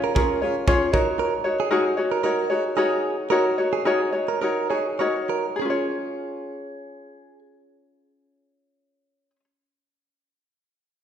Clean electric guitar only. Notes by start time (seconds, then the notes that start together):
0.04 A#4
0.15 A#4
0.42 G#4
0.68 C#5
0.94 A#4
1.19 A#4
1.60 G#4
1.71 G#4
2.12 A#4
2.24 A#4
2.50 G#4
2.77 G#4
3.30 A#4
3.73 G#4
3.85 G#4
4.28 A#4
4.42 A#4
4.70 G#4
4.99 C#5
5.29 A#4
5.60 G#4